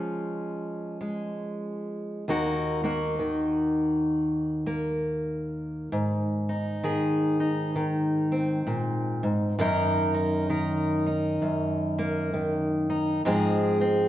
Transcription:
0, 0, Header, 1, 2, 480
1, 0, Start_track
1, 0, Tempo, 913242
1, 1198, Time_signature, 4, 2, 24, 8
1, 7403, End_track
2, 0, Start_track
2, 0, Title_t, "Steel-string acoustic guitar"
2, 0, Program_c, 0, 25
2, 0, Note_on_c, 0, 53, 58
2, 0, Note_on_c, 0, 56, 52
2, 0, Note_on_c, 0, 61, 51
2, 0, Note_on_c, 0, 65, 57
2, 523, Note_off_c, 0, 56, 0
2, 530, Note_on_c, 0, 56, 50
2, 1176, Note_off_c, 0, 53, 0
2, 1181, Note_off_c, 0, 61, 0
2, 1198, Note_off_c, 0, 56, 0
2, 1198, Note_on_c, 0, 39, 76
2, 1202, Note_on_c, 0, 58, 61
2, 1205, Note_off_c, 0, 65, 0
2, 1206, Note_on_c, 0, 63, 61
2, 1209, Note_on_c, 0, 66, 69
2, 1484, Note_off_c, 0, 58, 0
2, 1490, Note_off_c, 0, 63, 0
2, 1491, Note_off_c, 0, 66, 0
2, 1491, Note_on_c, 0, 58, 53
2, 1496, Note_on_c, 0, 63, 52
2, 1498, Note_on_c, 0, 66, 60
2, 1678, Note_on_c, 0, 51, 57
2, 2445, Note_off_c, 0, 58, 0
2, 2452, Note_on_c, 0, 58, 53
2, 3097, Note_off_c, 0, 58, 0
2, 3099, Note_off_c, 0, 63, 0
2, 3100, Note_off_c, 0, 66, 0
2, 3110, Note_off_c, 0, 39, 0
2, 3113, Note_on_c, 0, 44, 75
2, 3412, Note_on_c, 0, 63, 55
2, 3587, Note_off_c, 0, 51, 0
2, 3593, Note_on_c, 0, 51, 60
2, 3598, Note_on_c, 0, 68, 55
2, 3888, Note_off_c, 0, 63, 0
2, 3890, Note_on_c, 0, 63, 54
2, 4070, Note_off_c, 0, 51, 0
2, 4076, Note_on_c, 0, 51, 64
2, 4373, Note_on_c, 0, 60, 56
2, 4553, Note_off_c, 0, 51, 0
2, 4555, Note_on_c, 0, 46, 63
2, 4846, Note_off_c, 0, 44, 0
2, 4850, Note_off_c, 0, 46, 0
2, 4852, Note_on_c, 0, 44, 58
2, 5017, Note_off_c, 0, 63, 0
2, 5017, Note_off_c, 0, 68, 0
2, 5018, Note_off_c, 0, 60, 0
2, 5037, Note_off_c, 0, 44, 0
2, 5039, Note_on_c, 0, 42, 81
2, 5042, Note_on_c, 0, 51, 65
2, 5046, Note_on_c, 0, 58, 66
2, 5050, Note_on_c, 0, 63, 65
2, 5052, Note_on_c, 0, 70, 70
2, 5325, Note_off_c, 0, 63, 0
2, 5331, Note_on_c, 0, 63, 56
2, 5510, Note_off_c, 0, 51, 0
2, 5514, Note_off_c, 0, 70, 0
2, 5517, Note_on_c, 0, 51, 62
2, 5521, Note_on_c, 0, 70, 58
2, 5809, Note_off_c, 0, 63, 0
2, 5815, Note_on_c, 0, 63, 57
2, 5994, Note_off_c, 0, 42, 0
2, 6001, Note_on_c, 0, 42, 63
2, 6293, Note_off_c, 0, 58, 0
2, 6300, Note_on_c, 0, 58, 57
2, 6478, Note_off_c, 0, 51, 0
2, 6484, Note_on_c, 0, 51, 65
2, 6773, Note_off_c, 0, 63, 0
2, 6779, Note_on_c, 0, 63, 60
2, 6939, Note_off_c, 0, 42, 0
2, 6939, Note_off_c, 0, 70, 0
2, 6942, Note_off_c, 0, 58, 0
2, 6942, Note_off_c, 0, 63, 0
2, 6963, Note_off_c, 0, 51, 0
2, 6965, Note_on_c, 0, 44, 83
2, 6969, Note_on_c, 0, 53, 67
2, 6971, Note_on_c, 0, 56, 66
2, 6975, Note_on_c, 0, 60, 67
2, 6979, Note_on_c, 0, 68, 76
2, 7257, Note_off_c, 0, 60, 0
2, 7259, Note_on_c, 0, 60, 61
2, 7403, Note_off_c, 0, 44, 0
2, 7403, Note_off_c, 0, 53, 0
2, 7403, Note_off_c, 0, 56, 0
2, 7403, Note_off_c, 0, 60, 0
2, 7403, Note_off_c, 0, 68, 0
2, 7403, End_track
0, 0, End_of_file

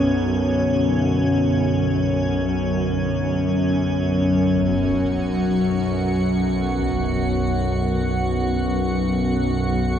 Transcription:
0, 0, Header, 1, 5, 480
1, 0, Start_track
1, 0, Key_signature, 2, "minor"
1, 0, Tempo, 500000
1, 9590, End_track
2, 0, Start_track
2, 0, Title_t, "Ambient pad"
2, 0, Program_c, 0, 92
2, 0, Note_on_c, 0, 61, 70
2, 0, Note_on_c, 0, 73, 78
2, 4377, Note_off_c, 0, 61, 0
2, 4377, Note_on_c, 0, 66, 77
2, 4380, Note_off_c, 0, 73, 0
2, 4394, Note_on_c, 0, 78, 74
2, 9590, Note_off_c, 0, 66, 0
2, 9590, Note_off_c, 0, 78, 0
2, 9590, End_track
3, 0, Start_track
3, 0, Title_t, "Analog synth pad"
3, 0, Program_c, 1, 89
3, 0, Note_on_c, 1, 50, 66
3, 0, Note_on_c, 1, 54, 69
3, 0, Note_on_c, 1, 59, 84
3, 0, Note_on_c, 1, 61, 89
3, 4368, Note_off_c, 1, 54, 0
3, 4370, Note_off_c, 1, 61, 0
3, 4377, Note_off_c, 1, 59, 0
3, 4380, Note_off_c, 1, 50, 0
3, 9590, End_track
4, 0, Start_track
4, 0, Title_t, "Synth drone"
4, 0, Program_c, 2, 95
4, 0, Note_on_c, 2, 35, 76
4, 0, Note_on_c, 2, 42, 71
4, 4358, Note_off_c, 2, 35, 0
4, 4367, Note_off_c, 2, 42, 0
4, 4370, Note_on_c, 2, 35, 75
4, 4379, Note_on_c, 2, 42, 74
4, 9590, Note_off_c, 2, 35, 0
4, 9590, Note_off_c, 2, 42, 0
4, 9590, End_track
5, 0, Start_track
5, 0, Title_t, "Impact"
5, 0, Program_c, 3, 103
5, 4383, Note_on_c, 3, 60, 73
5, 4591, Note_off_c, 3, 60, 0
5, 6509, Note_on_c, 3, 60, 56
5, 6721, Note_off_c, 3, 60, 0
5, 9590, End_track
0, 0, End_of_file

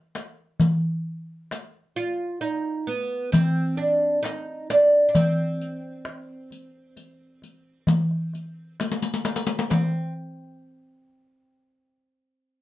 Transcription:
0, 0, Header, 1, 4, 480
1, 0, Start_track
1, 0, Tempo, 910470
1, 316, Time_signature, 10, 3, 24, 8
1, 6652, End_track
2, 0, Start_track
2, 0, Title_t, "Oud"
2, 0, Program_c, 0, 24
2, 1035, Note_on_c, 0, 65, 96
2, 1268, Note_off_c, 0, 65, 0
2, 1270, Note_on_c, 0, 63, 88
2, 1514, Note_on_c, 0, 59, 79
2, 1521, Note_off_c, 0, 63, 0
2, 1749, Note_off_c, 0, 59, 0
2, 1751, Note_on_c, 0, 60, 81
2, 1989, Note_on_c, 0, 62, 74
2, 2001, Note_off_c, 0, 60, 0
2, 2226, Note_off_c, 0, 62, 0
2, 2228, Note_on_c, 0, 63, 88
2, 2476, Note_off_c, 0, 63, 0
2, 2478, Note_on_c, 0, 62, 81
2, 2675, Note_off_c, 0, 62, 0
2, 2682, Note_on_c, 0, 62, 59
2, 2718, Note_off_c, 0, 62, 0
2, 2720, Note_on_c, 0, 60, 74
2, 4616, Note_off_c, 0, 60, 0
2, 5115, Note_on_c, 0, 60, 74
2, 5337, Note_off_c, 0, 60, 0
2, 6652, End_track
3, 0, Start_track
3, 0, Title_t, "Darbuka"
3, 82, Note_on_c, 9, 63, 61
3, 135, Note_off_c, 9, 63, 0
3, 314, Note_on_c, 9, 64, 83
3, 367, Note_off_c, 9, 64, 0
3, 798, Note_on_c, 9, 63, 62
3, 850, Note_off_c, 9, 63, 0
3, 1043, Note_on_c, 9, 62, 22
3, 1096, Note_off_c, 9, 62, 0
3, 1758, Note_on_c, 9, 64, 91
3, 1810, Note_off_c, 9, 64, 0
3, 2000, Note_on_c, 9, 62, 26
3, 2053, Note_off_c, 9, 62, 0
3, 2237, Note_on_c, 9, 63, 61
3, 2289, Note_off_c, 9, 63, 0
3, 2479, Note_on_c, 9, 63, 68
3, 2532, Note_off_c, 9, 63, 0
3, 2714, Note_on_c, 9, 64, 83
3, 2767, Note_off_c, 9, 64, 0
3, 3190, Note_on_c, 9, 63, 68
3, 3243, Note_off_c, 9, 63, 0
3, 3430, Note_on_c, 9, 62, 23
3, 3483, Note_off_c, 9, 62, 0
3, 3672, Note_on_c, 9, 62, 25
3, 3725, Note_off_c, 9, 62, 0
3, 3912, Note_on_c, 9, 62, 23
3, 3965, Note_off_c, 9, 62, 0
3, 4149, Note_on_c, 9, 64, 82
3, 4202, Note_off_c, 9, 64, 0
3, 4275, Note_on_c, 9, 62, 26
3, 4327, Note_off_c, 9, 62, 0
3, 4393, Note_on_c, 9, 62, 28
3, 4446, Note_off_c, 9, 62, 0
3, 4638, Note_on_c, 9, 63, 69
3, 4691, Note_off_c, 9, 63, 0
3, 4876, Note_on_c, 9, 63, 68
3, 4929, Note_off_c, 9, 63, 0
3, 5119, Note_on_c, 9, 64, 72
3, 5172, Note_off_c, 9, 64, 0
3, 6652, End_track
4, 0, Start_track
4, 0, Title_t, "Riq"
4, 80, Note_on_c, 9, 54, 47
4, 132, Note_off_c, 9, 54, 0
4, 319, Note_on_c, 9, 54, 46
4, 372, Note_off_c, 9, 54, 0
4, 802, Note_on_c, 9, 54, 49
4, 854, Note_off_c, 9, 54, 0
4, 1044, Note_on_c, 9, 54, 18
4, 1097, Note_off_c, 9, 54, 0
4, 1524, Note_on_c, 9, 54, 16
4, 1577, Note_off_c, 9, 54, 0
4, 1762, Note_on_c, 9, 54, 50
4, 1815, Note_off_c, 9, 54, 0
4, 2243, Note_on_c, 9, 54, 54
4, 2295, Note_off_c, 9, 54, 0
4, 2479, Note_on_c, 9, 54, 48
4, 2532, Note_off_c, 9, 54, 0
4, 2716, Note_on_c, 9, 54, 51
4, 2769, Note_off_c, 9, 54, 0
4, 2960, Note_on_c, 9, 54, 18
4, 3012, Note_off_c, 9, 54, 0
4, 3438, Note_on_c, 9, 54, 17
4, 3490, Note_off_c, 9, 54, 0
4, 3674, Note_on_c, 9, 54, 18
4, 3727, Note_off_c, 9, 54, 0
4, 3920, Note_on_c, 9, 54, 17
4, 3973, Note_off_c, 9, 54, 0
4, 4156, Note_on_c, 9, 54, 53
4, 4208, Note_off_c, 9, 54, 0
4, 4401, Note_on_c, 9, 54, 17
4, 4454, Note_off_c, 9, 54, 0
4, 4643, Note_on_c, 9, 54, 52
4, 4695, Note_off_c, 9, 54, 0
4, 4700, Note_on_c, 9, 54, 61
4, 4753, Note_off_c, 9, 54, 0
4, 4757, Note_on_c, 9, 54, 58
4, 4810, Note_off_c, 9, 54, 0
4, 4817, Note_on_c, 9, 54, 65
4, 4869, Note_off_c, 9, 54, 0
4, 4876, Note_on_c, 9, 54, 67
4, 4928, Note_off_c, 9, 54, 0
4, 4934, Note_on_c, 9, 54, 69
4, 4987, Note_off_c, 9, 54, 0
4, 4991, Note_on_c, 9, 54, 76
4, 5043, Note_off_c, 9, 54, 0
4, 5054, Note_on_c, 9, 54, 79
4, 5107, Note_off_c, 9, 54, 0
4, 5118, Note_on_c, 9, 54, 72
4, 5171, Note_off_c, 9, 54, 0
4, 6652, End_track
0, 0, End_of_file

